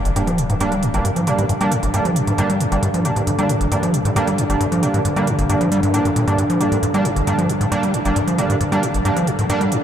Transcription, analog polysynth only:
0.16 G3 A#3 D4
0.61 G3 A#3 D4
0.94 G3 A#3 D4
1.27 G3 A#3 D4
1.61 G3 A#3 D4
1.94 G3 A#3 D4
2.38 G3 A#3 D4
2.72 G3 A#3 D4
3.05 G3 A#3 D4
3.39 G3 A#3 D4
3.72 G3 A#3 D4
4.16 G3 A#3 D4
4.50 G3 A#3 D4
4.83 G3 A#3 D4
5.16 G3 A#3 D4
5.49 G3 A#3 D4
5.94 G3 A#3 D4
6.28 G3 A#3 D4
6.61 G3 A#3 D4
6.94 G3 A#3 D4
7.27 G3 A#3 D4
7.72 G3 A#3 D4
8.05 G3 A#3 D4
8.38 G3 A#3 D4
8.72 G3 A#3 D4
9.05 G3 A#3 D4
9.50 G3 A#3 D4

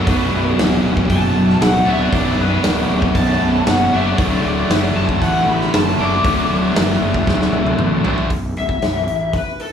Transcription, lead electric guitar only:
0.08 B4
1.11 A5
1.63 F#5
1.89 E5
2.02 D5
2.40 B4
3.16 A5
3.68 F#5
3.94 E5
4.07 D5
4.45 D5
4.97 A5
5.22 F#5
5.49 B5
5.75 A5
6.01 D6
8.59 E5
9.36 B4
9.61 A4

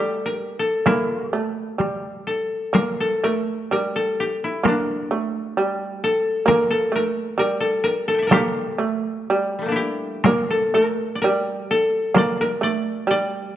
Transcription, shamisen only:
Already playing: G3
0.86 A#3
1.33 A3
1.78 G3
2.73 A#3
3.24 A3
3.71 G3
4.63 A#3
5.11 A3
5.57 G3
6.46 A#3
6.92 A3
7.38 G3
8.31 A#3
8.78 A3
9.30 G3
10.26 A#3
10.74 A3
11.24 G3
12.14 A#3
12.61 A3
13.07 G3

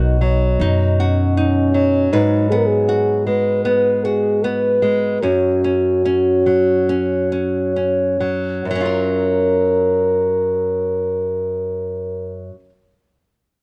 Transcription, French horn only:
Already playing: A#4
1.00 C#4
2.12 D#4
2.50 G#4
2.56 A#4
2.67 G#4
3.27 B4
3.65 B4
4.04 G#4
4.44 B4
5.23 F#4
8.66 A#4

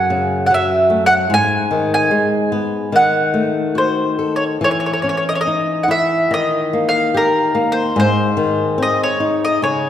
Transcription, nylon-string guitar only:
Already playing: F#2
0.10 C#3
0.51 F#3
0.90 A3
1.30 G#2
1.71 D#3
2.11 G#3
2.52 B3
2.92 D#3
3.34 A3
3.75 F#4
4.19 A4
4.61 E3
5.04 C#4
5.47 D#4
5.88 E4
6.31 D#3
6.73 A#3
7.14 G4
7.55 A#3
7.96 G#2
8.37 D#3
8.78 C4
9.20 D#4
9.62 C#3

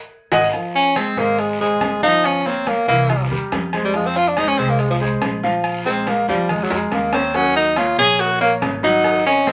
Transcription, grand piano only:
0.32 D#5 F#5 G#5
0.53 F3 F4
0.96 G#3 G#4 C5
1.17 G#3 G#4 C5
1.60 G#3 G#4 C5
2.03 F3 F4 F5
2.46 A#3 A#4 C#5
2.88 E3 E4 E5
3.10 G3 G4 A#4
3.31 G3 G4 A#4
3.74 G#3 G#4 C5
3.95 F3 F4 F5
4.37 G#3 G#4 C5
4.58 G#3 G#4 C5
5.01 G#3 G#4 C5
5.43 F3 F4 F5
5.86 G#3 G#4 A#4
6.29 F3 F4 F5
6.49 G#3 G#4 A#4
6.71 G#3 G#4 A#4
7.14 A#3 A#4 C#5
7.34 F#3 F#4 F#5
7.77 A#3 A#4 C#5
7.98 A#3 A#4 C#5
8.40 A#3 A#4 C#5
8.83 F#3 F#4 F#5
9.26 C4 C5 D#5

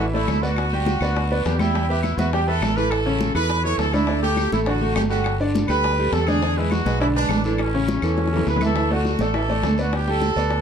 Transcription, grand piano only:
0.00 E3 E4 E5
0.14 A3 A4 D5
0.42 B3 B4 D5
0.73 G3 G4 G5
1.02 B3 B4 D5
1.31 B3 B4 D5
1.60 G3 G4 G5
1.74 G3 G4 G5
1.89 B3 B4 E5
2.18 B3 B4 E5
2.33 G3 G4 G5
2.48 B3 B4 E5
2.77 E3 E4 A4
3.06 C#3 C#4 C#5
3.35 E3 E4 A4
3.64 E3 E4 A4
3.93 D3 D4 D5
4.08 D3 D4 D5
4.23 A3 A4
4.52 A3 A4
4.67 D3 D4 D5
4.81 A3 A4
5.10 G3 G4 A4
5.40 D3 D4 D5
5.69 G3 G4 A4
5.99 G3 G4 A4
6.28 D3 D4 D5
6.42 D3 D4 D5
6.57 G#3 G#4 B4
6.86 G#3 G#4 B4
7.01 D3 D4 D5
7.16 G#3 G#4 B4
7.45 E3 E4 A4
7.74 C#3 C#4 C#5
8.03 E3 E4 A4
8.33 E3 E4 A4
8.62 E3 E4 E5
8.76 E3 E4 E5
8.90 A3 A4 D5
9.20 A3 A4 D5
9.35 E3 E4 E5
9.49 A3 A4 D5
9.78 B3 B4 D5
10.07 G3 G4 G5
10.36 B3 B4 D5

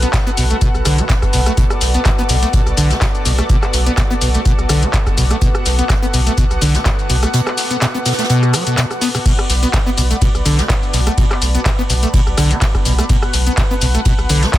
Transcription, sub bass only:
0.37 B1
0.74 B1
0.85 B1
1.33 B1
1.81 B1
2.29 B1
2.66 B1
2.77 B1
3.25 B1
3.73 B1
4.21 B1
4.59 B1
4.69 B1
5.18 B1
5.66 B1
6.14 B1
6.51 B1
6.62 B1
7.10 B1
9.49 B1
9.97 B1
10.35 B1
10.46 B1
10.93 B1
11.42 B1
11.90 B1
12.27 B1
12.38 B1
12.86 B1
13.34 B1
13.82 B1
14.19 B1
14.29 B1

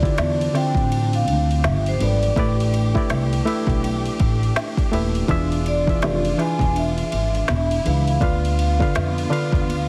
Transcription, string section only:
Already playing: D3 C4 D4
1.63 F3 B3 G4
2.37 A3 D4
5.30 G#3 F4
7.49 E4
8.22 D3 B3 F4

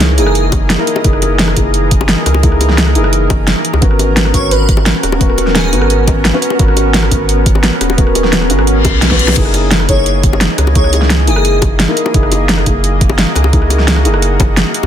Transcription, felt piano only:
Already playing: A#3 D#4 E4 G#4
0.18 A#3 D#4 E4 G#4
0.78 A#3 D#4 E4 A#4
1.04 A#3 D#4 E4 G#4
1.56 A#3 D#4 E4 G#4
2.43 A#3 D#4 E4 G#4
2.95 A#3 D#4 E4 G#4
3.81 B3 C#4 F#4 A#4
4.33 B3 C#4 F#4 A#4
5.20 B3 C#4 F#4 A#4
5.72 B3 C#4 F#4 A#4
6.33 B3 C#4 F#4 B4
6.59 B3 C#4 F#4 A#4
7.11 B3 C#4 F#4 A#4
7.97 B3 C#4 F#4 A#4
8.50 B3 C#4 F#4 A#4
9.11 B3 C#4 F#4 B4
9.36 A#3 D#4 E4 G#4
9.88 A#3 D#4 E4 G#4
10.74 A#3 D#4 E4 G#4
11.27 A#3 D#4 E4 G#4
11.88 A#3 D#4 E4 A#4
12.13 A#3 D#4 E4 G#4
12.66 A#3 D#4 E4 G#4
13.52 A#3 D#4 E4 G#4
14.05 A#3 D#4 E4 G#4

